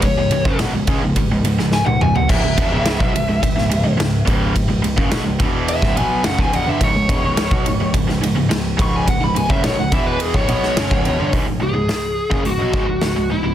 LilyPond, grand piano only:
\new Staff \with { instrumentName = "Grand piano" } { \clef bass \time 4/4 \key cis \minor \tempo 4 = 106 cis,,16 cis,,16 cis,,16 fis,,16 b,,16 cis,,16 cis,16 cis,,16 cis,,16 cis,,16 cis,,16 cis,,8 cis,,16 cis,,16 cis,,16 | cis,,16 cis,,16 e,,16 cis,,8 b,,16 cis,,16 cis,,16 cis,,16 cis,,16 cis,,16 cis,,16 cis,,8 cis,,8 | cis,,16 cis,,16 cis,,16 fis,,16 b,,16 cis,,16 e,,8. cis,,16 b,,8 fis,,16 cis,,16 e,,16 g,,16 | cis,,16 cis,,16 e,,16 cis,,8 b,,16 cis,,16 cis,,16 cis,,16 cis,,16 cis,,16 cis,,16 cis,,8 cis,,8 |
cis,,16 cis,,16 cis,,16 fis,,16 b,,16 cis,,16 e,,8. cis,,16 b,,8 fis,,16 cis,,16 e,,16 g,,16 | cis,,16 cis,,16 cis,,16 cis,,16 cis,,8 r16 fis,,16 cis,,16 b,,16 cis,,16 cis,,16 cis,,16 cis,,16 cis,,16 cis,,16 | }